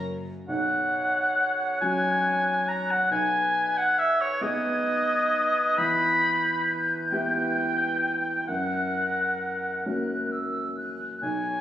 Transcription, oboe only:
0.48 1.77 F#5 medium
1.81 2.70 G#5 medium
2.68 2.92 A#5 medium
2.91 3.11 F#5 medium
3.12 3.79 G#5 medium
3.77 4.00 F#5 medium
3.99 4.22 E5 medium
4.21 4.44 C#5 medium
4.43 5.79 D#5 loud
5.78 6.84 B5 loud
7.11 8.44 G5 medium
8.48 9.82 F#5 medium
11.23 11.61 G#5 medium

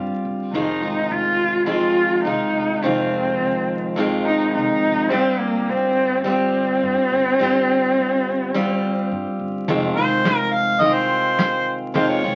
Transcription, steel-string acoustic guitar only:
0.00 0.54 G3 medium
0.00 0.54 C4 medium
0.00 0.55 F4 medium
0.00 0.54 G4 medium
0.54 0.83 F2 medium
0.54 0.83 D#3 medium
0.54 0.83 F3 medium
0.54 0.82 G#3 medium
0.54 0.82 C4 medium
0.54 0.80 F4 medium
0.82 1.66 D#3 soft
0.82 1.66 G#3 soft
0.82 1.67 C4 soft
0.82 1.67 F4 soft
1.66 2.25 F2 medium
1.66 2.24 D#3 medium
1.66 2.28 F3 medium
1.66 2.25 G#3 medium
1.66 2.26 C4 medium
1.66 2.26 F4 medium
2.25 2.82 D#3 soft
2.25 2.83 G#3 soft
2.25 2.85 C4 soft
2.25 2.85 F4 soft
2.83 3.95 F2 medium
2.83 3.96 D#3 medium
2.83 3.97 F3 medium
2.83 3.97 G#3 medium
2.83 3.98 C4 medium
2.83 3.99 F4 medium
3.96 5.11 F2 medium
3.96 5.10 D#3 medium
3.96 5.13 F3 medium
3.96 5.11 G#3 medium
3.96 5.11 C4 medium
3.96 5.13 F4 medium
5.10 6.23 G3 medium
5.10 6.25 C4 medium
5.10 6.27 F4 medium
5.10 6.26 G4 medium
6.24 7.38 G3 medium
6.24 7.41 C4 medium
6.24 7.42 F4 medium
6.24 7.40 G4 medium
7.39 8.53 G3 medium
7.39 8.54 C4 medium
7.39 8.55 G4 medium
7.43 8.55 F4 medium
8.54 9.68 G3 medium
8.54 9.68 C4 medium
8.54 9.68 F4 medium
8.54 9.69 G4 medium
9.68 9.96 F2 medium
9.68 9.96 D#3 medium
9.68 9.96 F3 medium
9.68 9.97 G#3 medium
9.68 9.97 C4 medium
9.68 9.96 F4 medium
9.97 10.79 D#3 soft
9.97 10.80 G#3 soft
9.97 10.84 C4 soft
9.97 10.83 F4 soft
10.80 11.94 D#3 soft
10.80 11.94 G#3 medium
10.80 11.95 C4 medium
10.85 11.96 F4 medium
11.94 12.23 F2 medium
11.94 12.24 D#3 medium
11.94 12.23 F3 medium
11.94 12.24 G#3 medium
11.94 12.23 C4 medium
11.94 12.23 F4 medium
12.24 12.35 D#3 soft
12.24 12.35 G#3 soft
12.24 12.35 C4 soft
12.24 12.35 F4 soft

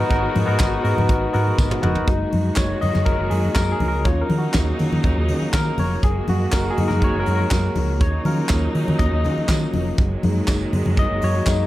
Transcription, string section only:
0.00 2.04 D#3 medium
0.00 2.05 G#3 medium
0.00 2.04 B3 medium
0.00 2.04 F#4 medium
2.08 4.04 D#3 medium
2.08 4.04 G#3 medium
2.08 11.67 A#3 medium
2.08 4.04 F#4 medium
4.06 6.02 C#3 medium
4.06 6.02 F#3 medium
4.06 6.02 D#4 medium
6.03 7.99 D#3 medium
6.03 7.99 G#3 medium
6.03 7.99 F#4 medium
8.01 9.97 C#3 medium
8.01 9.97 F#3 medium
8.01 9.97 D#4 medium
9.98 11.67 D#3 medium
9.98 11.67 F#3 medium
9.98 11.67 G#3 medium

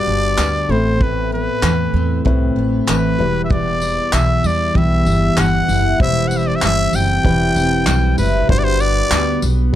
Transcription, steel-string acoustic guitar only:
0.00 0.76 G3 medium
0.00 0.38 B3 medium
0.07 0.76 D4 medium
0.38 1.04 B3 medium
0.69 1.00 A2 medium
1.01 2.24 A2 medium
1.32 2.55 B3 soft
1.63 2.86 E3 medium
1.94 3.25 C4 medium
2.25 3.19 A2 medium
2.56 3.81 B3 medium
2.87 4.12 E3 medium
3.19 3.49 E2 medium
3.50 4.74 E2 medium
3.81 5.05 B3 medium
4.13 5.37 E3 medium
4.44 6.63 G3 medium
4.75 6.06 E2 medium
5.06 6.06 B3 medium
5.38 6.00 E3 medium
5.69 8.18 E4 medium
6.00 7.24 E3 medium
6.32 7.55 C4 medium
6.63 6.93 G3 medium
6.94 7.87 G3 medium
7.25 8.49 E3 medium
7.56 8.56 C4 medium
7.87 8.49 G3 medium
8.18 8.56 E4 medium
8.49 9.73 G3 medium
9.12 9.43 B3 medium
9.43 9.75 B3 medium

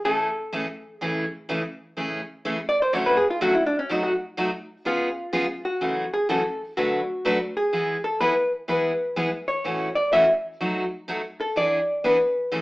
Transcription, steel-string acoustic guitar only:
0.05 0.28 A2 medium
0.05 0.28 C#3 medium
0.05 0.28 E3 medium
0.05 0.28 A3 medium
0.05 0.28 C#4 medium
0.05 0.28 G#4 medium
0.53 0.65 A2 medium
0.53 0.65 C#3 medium
0.53 0.65 E3 medium
0.53 0.65 A3 medium
0.53 0.65 C#4 medium
0.53 0.65 G#4 medium
1.01 1.24 A2 medium
1.01 1.24 C#3 medium
1.01 1.24 E3 medium
1.01 1.24 A3 medium
1.01 1.24 C#4 medium
1.01 1.24 G#4 medium
1.49 1.61 A2 medium
1.49 1.61 C#3 medium
1.49 1.61 E3 medium
1.49 1.61 A3 medium
1.49 1.61 C#4 medium
1.49 1.61 G#4 medium
1.97 2.20 A2 medium
1.97 2.20 C#3 soft
1.97 2.20 E3 medium
1.97 2.20 A3 medium
1.97 2.20 C#4 medium
1.97 2.20 G#4 medium
2.45 2.57 A2 medium
2.45 2.57 C#3 medium
2.45 2.57 E3 medium
2.45 2.57 A3 medium
2.45 2.57 C#4 medium
2.45 2.57 G#4 medium
2.93 3.16 A2 medium
2.93 3.16 D3 medium
2.93 3.16 F#3 medium
2.93 3.16 A3 medium
2.93 3.16 C#4 medium
2.93 3.16 F#4 medium
3.41 3.53 A2 medium
3.41 3.53 D3 medium
3.41 3.53 F#3 medium
3.41 3.53 A3 medium
3.41 3.53 C#4 medium
3.41 3.53 F#4 medium
3.89 4.12 B2 medium
3.89 4.12 F#3 medium
3.89 4.12 A3 medium
3.89 4.12 D#4 medium
3.89 4.12 F#4 medium
4.37 4.49 B2 medium
4.37 4.49 F#3 medium
4.37 4.49 A3 medium
4.37 4.49 D#4 medium
4.37 4.50 F#4 medium
4.85 5.08 C#3 medium
4.85 5.08 G#3 medium
4.85 5.08 B3 medium
4.85 5.08 F4 medium
4.85 5.08 G#4 medium
5.33 5.45 C#3 medium
5.33 5.45 G#3 medium
5.33 5.45 B3 medium
5.33 5.45 F4 medium
5.33 5.45 G#4 medium
5.81 6.04 F#2 medium
5.81 6.04 C#3 medium
5.81 6.04 E3 medium
5.81 6.04 A3 medium
5.81 6.04 C#4 medium
5.81 6.04 F#4 medium
6.29 6.41 F#2 medium
6.29 6.41 C#3 medium
6.29 6.41 E3 medium
6.29 6.41 A3 medium
6.29 6.41 C#4 medium
6.29 6.41 F#4 medium
6.77 7.00 D3 medium
6.77 7.00 F#3 medium
6.77 7.00 A3 medium
6.77 7.00 D4 medium
6.77 7.00 F#4 medium
6.77 7.00 B4 medium
7.25 7.37 D3 medium
7.25 7.37 F#3 medium
7.25 7.37 A3 medium
7.25 7.37 D4 medium
7.25 7.37 F#4 medium
7.25 7.37 B4 medium
7.73 7.95 E3 medium
7.73 7.96 G#3 medium
7.73 7.96 B3 medium
7.73 7.96 E4 medium
7.73 7.96 G#4 medium
8.20 8.32 E3 medium
8.20 8.33 G#3 medium
8.20 8.33 B3 medium
8.20 8.33 E4 medium
8.20 8.33 G#4 medium
8.68 8.91 E3 medium
8.68 8.91 G#3 medium
8.68 8.91 B3 medium
8.68 8.91 E4 medium
8.68 8.91 G#4 medium
9.16 9.28 E3 medium
9.16 9.28 G#3 medium
9.16 9.29 B3 medium
9.16 9.29 E4 medium
9.16 9.29 G#4 medium
9.64 9.87 A2 medium
9.64 9.87 C#3 medium
9.64 9.87 E3 medium
9.64 9.87 A3 medium
9.64 9.88 C#4 medium
9.64 9.88 F#4 medium
10.12 10.24 A2 medium
10.12 10.24 C#3 medium
10.12 10.24 E3 medium
10.12 10.25 A3 medium
10.12 10.25 C#4 medium
10.12 10.25 F#4 medium
10.60 10.83 B2 medium
10.60 10.83 F#3 medium
10.60 10.83 A3 medium
10.60 10.83 D#4 medium
10.60 10.83 F#4 medium
11.08 11.20 B2 medium
11.08 11.20 F#3 medium
11.08 11.20 A3 medium
11.08 11.21 D#4 medium
11.08 11.21 F#4 medium
11.56 11.79 E3 medium
11.56 11.79 B3 medium
11.56 11.79 D4 medium
11.56 11.79 G#4 medium
12.04 12.16 E3 medium
12.04 12.16 B3 medium
12.04 12.16 D4 medium
12.04 12.16 G#4 medium
12.52 12.62 A2 medium
12.52 12.62 C#3 medium
12.52 12.62 E3 medium
12.52 12.62 A3 medium
12.52 12.62 C#4 medium
12.52 12.62 G#4 medium

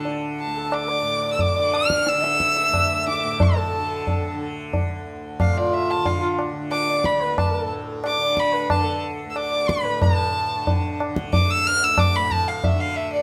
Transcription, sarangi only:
0.00 0.22 A4 medium
0.56 0.90 A4 medium
0.88 1.55 D5 medium
1.55 2.23 D5 medium
2.22 3.58 E5 medium
3.56 4.56 A4 medium
5.55 6.18 F4 medium
6.21 6.37 F4 medium
6.88 7.22 D5 medium
7.21 7.55 B4 medium
7.53 7.87 A4 soft
8.19 8.54 D5 medium
8.53 8.87 B4 medium
8.85 9.19 A4 soft
9.51 9.85 D5 medium
9.84 10.17 B4 medium

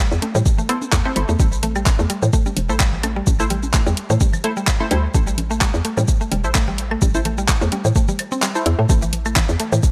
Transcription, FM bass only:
0.12 0.19 E2 loud
0.35 0.42 A2 medium
0.93 1.01 E2 medium
1.16 1.25 G1 medium
1.29 1.36 E2 medium
1.40 1.93 A1 loud
1.99 2.06 E2 loud
2.23 2.30 A2 medium
2.57 2.71 E1 medium
2.69 3.22 A1 loud
3.27 3.80 A1 loud
3.87 3.94 E2 loud
4.10 4.17 A2 medium
4.91 5.08 D2 loud
5.14 5.68 A1 loud
5.74 5.81 E2 loud
5.97 6.05 A2 medium
6.32 6.46 E1 medium
6.44 6.97 A1 loud
7.02 7.55 A1 loud
7.61 7.69 E2 loud
7.85 7.92 A2 medium
8.66 8.75 E2 loud
8.79 8.86 A2 loud
8.89 9.43 A1 loud
9.49 9.56 E2 loud
9.73 9.80 A2 medium

